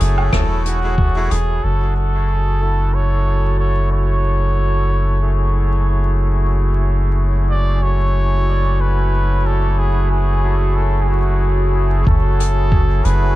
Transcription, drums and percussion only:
0.00 closed hi-hat
0.18 low woodblock
0.33 kick, cross-stick
0.66 closed hi-hat
0.98 kick
1.31 closed hi-hat
12.07 kick
12.40 closed hi-hat
12.72 kick
13.05 closed hi-hat

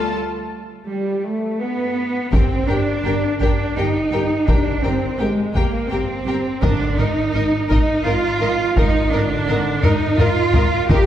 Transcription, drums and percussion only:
2.33 taiko
3.41 taiko
4.48 taiko
5.56 taiko
6.63 taiko
7.70 taiko
8.77 taiko
9.83 taiko low-mid
10.18 taiko low-mid
10.54 taiko low
10.89 taiko

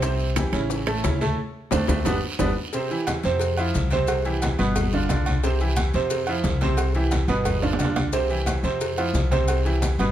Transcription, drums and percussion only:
0.02 high bongo, high conga, high timbale, long guiro, maracas
0.20 high conga, maracas
0.36 high bongo, high conga, high timbale, short guiro, maracas
0.53 high conga, high timbale, short guiro, maracas
0.70 high bongo, high conga, long guiro, maracas
0.87 high conga, high timbale, maracas
1.04 high bongo, low bongo, high conga, high timbale, short guiro, maracas
1.21 high conga, short guiro, maracas
1.71 low bongo, low conga, high timbale, long guiro, maracas
1.88 low bongo, low conga, high timbale, long guiro, maracas
2.05 low bongo, low conga, high timbale, long guiro, maracas
2.39 low bongo, low conga, high timbale, maracas
2.73 cowbell, high conga, long guiro, maracas
2.90 high conga, maracas
3.07 cowbell, high conga, low agogo, short guiro, maracas
3.23 cowbell, high conga, short guiro, maracas
3.40 cowbell, high conga, low agogo, long guiro, maracas
3.57 high conga, low agogo, maracas
3.74 cowbell, high conga, short guiro, maracas
3.90 cowbell, high conga, low agogo, short guiro, maracas
4.07 cowbell, high conga, low agogo, long guiro, maracas
4.25 cowbell, high conga, maracas
4.42 cowbell, high conga, low agogo, short guiro, maracas
4.59 low agogo, short guiro, maracas
4.76 cowbell, high conga, low conga, low agogo, long guiro, maracas
4.92 high conga, low conga, maracas
5.09 cowbell, high conga, low timbale, low agogo, short guiro, maracas
5.26 high conga, low agogo, short guiro, maracas
5.44 cowbell, high conga, long guiro, maracas
5.60 high conga, maracas
5.76 cowbell, high conga, low agogo, short guiro, maracas
5.93 cowbell, high conga, short guiro, maracas
6.10 cowbell, high conga, low agogo, long guiro, maracas
6.27 high conga, low agogo, maracas
6.44 cowbell, high conga, low timbale, short guiro, maracas
6.61 cowbell, high conga, low agogo, short guiro, maracas
6.77 cowbell, high conga, low agogo, long guiro, maracas
6.94 cowbell, high conga, maracas
7.11 cowbell, high conga, low agogo, short guiro, maracas
7.28 high conga, low agogo, short guiro, maracas
7.45 cowbell, high conga, low conga, low agogo, long guiro, maracas
7.62 high conga, low conga, high timbale, maracas
7.73 low timbale
7.79 cowbell, high conga, low agogo, short guiro, maracas
7.85 low timbale
7.96 high conga, low timbale, low agogo, short guiro, maracas
8.13 cowbell, high conga, long guiro, maracas
8.29 high conga, maracas
8.46 cowbell, high conga, low agogo, short guiro, maracas
8.64 cowbell, high conga, short guiro, maracas
8.81 cowbell, high conga, low agogo, long guiro, maracas
8.97 high conga, low agogo, maracas
9.14 cowbell, high conga, low timbale, short guiro, maracas
9.32 cowbell, high conga, low agogo, short guiro, maracas
9.48 cowbell, high conga, low agogo, long guiro, maracas
9.65 cowbell, high conga, maracas
9.82 cowbell, high conga, low agogo, short guiro, maracas
9.99 high conga, low agogo, short guiro, maracas

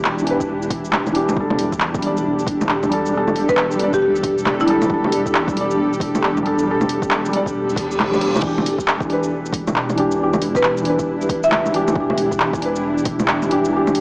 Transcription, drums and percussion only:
0.05 clap
0.19 shaker
0.27 open hi-hat
0.40 kick, shaker
0.62 shaker
0.70 kick, open hi-hat
0.85 shaker
0.93 clap, low bongo
1.06 low bongo, shaker
1.15 open hi-hat
1.29 low bongo, shaker
1.36 kick
1.50 low bongo
1.59 open hi-hat
1.72 kick, shaker
1.80 clap
1.94 kick, shaker
2.02 open hi-hat
2.17 shaker
2.39 shaker
2.47 kick, open hi-hat
2.61 low bongo, shaker
2.69 clap
2.83 low bongo, shaker
2.92 open hi-hat
3.06 shaker
3.28 low bongo, shaker
3.36 open hi-hat
3.49 kick, shaker
3.57 clap
3.71 shaker
3.79 open hi-hat
3.93 kick, shaker
4.16 shaker
4.23 kick, open hi-hat
4.38 shaker
4.46 clap, low bongo
4.60 low bongo, shaker
4.67 open hi-hat
4.82 low bongo, shaker
4.90 kick
5.04 low bongo
5.12 open hi-hat
5.26 kick, shaker
5.35 clap
5.48 kick, shaker
5.57 open hi-hat
5.71 shaker
5.93 shaker
6.00 kick, open hi-hat
6.15 low bongo, shaker
6.23 clap
6.37 low bongo, shaker
6.46 open hi-hat
6.59 shaker
6.81 low bongo, shaker
6.89 open hi-hat
7.02 kick, shaker
7.11 clap
7.25 shaker
7.33 open hi-hat
7.46 kick, shaker
7.70 shaker
7.76 kick, open hi-hat
7.91 shaker
8.00 clap, low bongo
8.14 low bongo, shaker
8.21 open hi-hat
8.36 low bongo, shaker
8.42 kick, crash
8.58 low bongo
8.66 open hi-hat
8.79 kick, shaker
8.88 clap
9.01 kick, shaker
9.10 open hi-hat
9.23 shaker
9.46 shaker
9.53 kick, open hi-hat
9.68 low bongo, shaker
9.76 clap
9.90 low bongo, shaker
9.98 open hi-hat
10.11 shaker
10.34 low bongo, shaker
10.42 open hi-hat
10.55 kick, shaker
10.63 clap
10.77 shaker
10.85 open hi-hat
10.99 kick, shaker
11.21 shaker
11.29 kick, open hi-hat
11.43 shaker
11.52 clap, low bongo
11.66 low bongo, shaker
11.74 open hi-hat
11.88 low bongo, shaker
11.95 kick
12.10 low bongo
12.18 open hi-hat
12.31 kick, shaker
12.40 clap
12.53 kick, shaker
12.62 open hi-hat
12.76 shaker
12.98 shaker
13.05 kick, open hi-hat
13.20 low bongo, shaker
13.28 clap
13.42 low bongo, shaker
13.51 open hi-hat
13.65 shaker
13.87 low bongo, shaker
13.95 open hi-hat

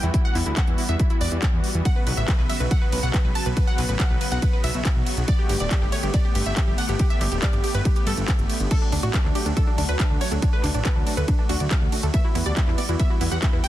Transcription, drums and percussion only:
0.03 closed hi-hat
0.14 kick, closed hi-hat
0.35 clap, open hi-hat
0.57 kick, clap, closed hi-hat
0.67 closed hi-hat
0.78 open hi-hat
0.89 closed hi-hat
0.99 kick, closed hi-hat
1.10 closed hi-hat
1.21 open hi-hat
1.32 closed hi-hat
1.42 kick, clap, closed hi-hat
1.64 open hi-hat
1.75 closed hi-hat
1.85 kick, closed hi-hat, ride
2.07 open hi-hat, ride
2.17 closed hi-hat
2.28 kick, clap, closed hi-hat, ride
2.39 clap
2.50 open hi-hat, ride
2.60 closed hi-hat
2.71 kick, closed hi-hat, ride
2.92 open hi-hat, ride
3.03 closed hi-hat
3.14 kick, clap, closed hi-hat, ride
3.35 open hi-hat, ride
3.46 closed hi-hat
3.57 kick, closed hi-hat, ride
3.78 clap, open hi-hat, ride
3.89 closed hi-hat
4.00 kick, clap, closed hi-hat, ride
4.21 open hi-hat, ride
4.32 closed hi-hat
4.42 kick, closed hi-hat, ride
4.64 open hi-hat, ride
4.74 closed hi-hat
4.85 kick, clap, closed hi-hat, ride
5.06 open hi-hat, ride
5.17 closed hi-hat
5.28 kick, closed hi-hat, ride
5.49 open hi-hat, ride
5.60 closed hi-hat
5.71 kick, clap, closed hi-hat, ride
5.82 clap
5.92 open hi-hat, ride
6.03 closed hi-hat
6.14 kick, closed hi-hat, ride
6.35 open hi-hat, ride
6.46 closed hi-hat
6.57 kick, clap, closed hi-hat, ride
6.78 open hi-hat, ride
6.89 closed hi-hat
6.99 kick, closed hi-hat, ride
7.10 closed hi-hat
7.21 clap, open hi-hat, ride
7.32 closed hi-hat
7.42 kick, clap, closed hi-hat, ride
7.53 closed hi-hat
7.64 open hi-hat, ride
7.74 closed hi-hat
7.85 kick, closed hi-hat, ride
7.96 closed hi-hat
8.07 open hi-hat, ride
8.17 closed hi-hat
8.28 kick, clap, closed hi-hat, ride
8.39 closed hi-hat
8.50 open hi-hat, ride
8.60 closed hi-hat
8.71 kick, closed hi-hat, crash, ride
8.92 open hi-hat, ride
9.03 closed hi-hat
9.14 kick, clap, closed hi-hat, ride
9.25 clap
9.35 open hi-hat, ride
9.46 closed hi-hat
9.57 kick, closed hi-hat, ride
9.78 open hi-hat, ride
9.89 closed hi-hat
10.00 kick, clap, closed hi-hat, ride
10.21 open hi-hat, ride
10.32 closed hi-hat
10.42 kick, closed hi-hat, ride
10.64 clap, open hi-hat, ride
10.74 closed hi-hat
10.85 kick, clap, closed hi-hat, ride
11.07 open hi-hat, ride
11.17 closed hi-hat
11.28 kick, closed hi-hat, ride
11.49 open hi-hat, ride
11.60 closed hi-hat
11.71 kick, clap, closed hi-hat, ride
11.92 open hi-hat, ride
12.03 closed hi-hat
12.14 kick, closed hi-hat, ride
12.35 open hi-hat, ride
12.46 closed hi-hat
12.57 kick, clap, closed hi-hat, ride
12.67 clap
12.78 open hi-hat, ride
12.89 closed hi-hat
13.00 kick, closed hi-hat, ride
13.21 open hi-hat, ride
13.32 closed hi-hat
13.42 kick, clap, closed hi-hat, ride
13.64 open hi-hat, ride

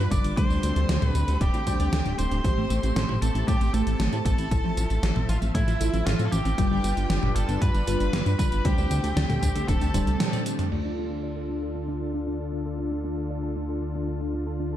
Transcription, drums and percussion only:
0.11 kick, closed hi-hat, tambourine
0.24 closed hi-hat, tambourine
0.37 kick, closed hi-hat, tambourine
0.50 tambourine
0.63 closed hi-hat, tambourine
0.76 closed hi-hat, tambourine
0.89 snare, closed hi-hat, tambourine
1.02 snare, closed hi-hat, mid tom
1.15 closed hi-hat, tambourine
1.28 closed hi-hat, tambourine
1.41 kick, closed hi-hat, tambourine
1.54 closed hi-hat, tambourine
1.67 kick, closed hi-hat, tambourine
1.80 closed hi-hat, tambourine
1.93 snare, closed hi-hat, tambourine
2.06 closed hi-hat, tambourine
2.19 closed hi-hat, tambourine
2.32 closed hi-hat, tambourine
2.44 kick, closed hi-hat, tambourine
2.70 closed hi-hat, tambourine
2.83 closed hi-hat, tambourine
2.96 snare, closed hi-hat, tambourine
3.09 mid tom
3.22 closed hi-hat, tambourine
3.35 closed hi-hat, tambourine
3.48 kick, closed hi-hat, tambourine
3.61 closed hi-hat, tambourine
3.74 closed hi-hat, tambourine
3.87 closed hi-hat, tambourine
4.00 snare, closed hi-hat, tambourine
4.13 closed hi-hat, tambourine
4.25 kick, closed hi-hat, tambourine
4.38 closed hi-hat, tambourine
4.51 kick, closed hi-hat, tambourine
4.77 closed hi-hat, tambourine
4.90 closed hi-hat, tambourine
5.03 snare, closed hi-hat, tambourine
5.16 snare, mid tom
5.29 closed hi-hat, tambourine
5.42 closed hi-hat, tambourine
5.55 kick, closed hi-hat, tambourine
5.68 closed hi-hat, tambourine
5.81 closed hi-hat, tambourine
5.94 closed hi-hat, tambourine
6.07 snare, closed hi-hat, tambourine
6.19 closed hi-hat, tambourine
6.32 closed hi-hat, tambourine
6.45 closed hi-hat, tambourine
6.58 kick, closed hi-hat, tambourine
6.84 closed hi-hat, tambourine
6.97 closed hi-hat, tambourine
7.10 snare, closed hi-hat, tambourine
7.23 mid tom
7.36 closed hi-hat, tambourine
7.49 closed hi-hat, tambourine
7.62 kick, closed hi-hat, tambourine
7.75 closed hi-hat, tambourine
7.87 closed hi-hat, tambourine
8.00 closed hi-hat, tambourine
8.13 snare, closed hi-hat, tambourine
8.26 closed hi-hat, tambourine
8.39 kick, closed hi-hat, tambourine
8.52 closed hi-hat, tambourine
8.65 kick, closed hi-hat, tambourine
8.78 tambourine
8.91 closed hi-hat, tambourine
9.04 closed hi-hat, tambourine
9.17 snare, closed hi-hat, tambourine
9.30 snare, closed hi-hat, mid tom, tambourine
9.42 kick, closed hi-hat, tambourine
9.56 closed hi-hat, tambourine
9.68 kick, closed hi-hat, tambourine
9.81 closed hi-hat, tambourine
9.94 kick, closed hi-hat, high tom, tambourine
10.07 closed hi-hat, tambourine
10.20 snare, closed hi-hat, mid tom, tambourine
10.33 closed hi-hat, mid tom, tambourine
10.46 closed hi-hat, tambourine
10.59 closed hi-hat, mid tom, tambourine
10.72 crash

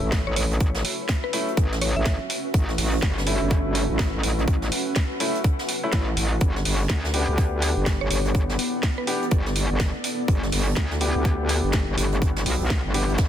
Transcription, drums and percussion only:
0.12 kick, snare, closed hi-hat
0.36 closed hi-hat, open hi-hat
0.51 closed hi-hat
0.60 kick, closed hi-hat
0.75 snare
0.85 closed hi-hat, open hi-hat
1.09 kick, snare, closed hi-hat
1.33 closed hi-hat, open hi-hat
1.48 closed hi-hat
1.57 kick, closed hi-hat
1.72 snare
1.81 closed hi-hat, open hi-hat
2.05 kick, snare, closed hi-hat
2.30 closed hi-hat, open hi-hat
2.54 kick, closed hi-hat
2.69 snare
2.78 snare, open hi-hat
3.02 kick, snare
3.18 snare
3.27 closed hi-hat, open hi-hat
3.50 kick, closed hi-hat
3.75 snare, closed hi-hat, open hi-hat
3.99 kick, snare, closed hi-hat
4.23 closed hi-hat, open hi-hat
4.39 closed hi-hat
4.47 kick, closed hi-hat
4.62 snare
4.72 closed hi-hat, open hi-hat
4.95 kick, snare, closed hi-hat
5.20 closed hi-hat, open hi-hat
5.35 closed hi-hat
5.44 kick, closed hi-hat
5.59 snare
5.69 closed hi-hat, open hi-hat
5.92 kick, snare, closed hi-hat
6.17 closed hi-hat, open hi-hat
6.41 kick, closed hi-hat
6.56 snare
6.65 snare, open hi-hat
6.89 kick, snare, closed hi-hat
7.04 snare
7.13 closed hi-hat, open hi-hat
7.38 kick, closed hi-hat
7.62 snare, closed hi-hat, open hi-hat
7.86 kick, snare, closed hi-hat
8.11 closed hi-hat, open hi-hat
8.25 closed hi-hat
8.35 kick, closed hi-hat
8.49 snare
8.59 closed hi-hat, open hi-hat
8.83 kick, snare, closed hi-hat
9.07 closed hi-hat, open hi-hat
9.22 closed hi-hat
9.31 kick, closed hi-hat
9.46 snare
9.56 closed hi-hat, open hi-hat
9.80 kick, snare, closed hi-hat
10.04 closed hi-hat, open hi-hat
10.28 kick, closed hi-hat
10.43 snare
10.52 snare, open hi-hat
10.77 kick, snare
10.91 snare
11.01 closed hi-hat, open hi-hat
11.25 kick, closed hi-hat
11.49 snare, closed hi-hat, open hi-hat
11.73 kick, snare, closed hi-hat
11.98 closed hi-hat, open hi-hat
12.12 closed hi-hat
12.22 kick, closed hi-hat
12.36 snare
12.46 snare, open hi-hat
12.70 kick, snare
12.94 closed hi-hat, open hi-hat
13.09 closed hi-hat
13.18 kick, snare, closed hi-hat

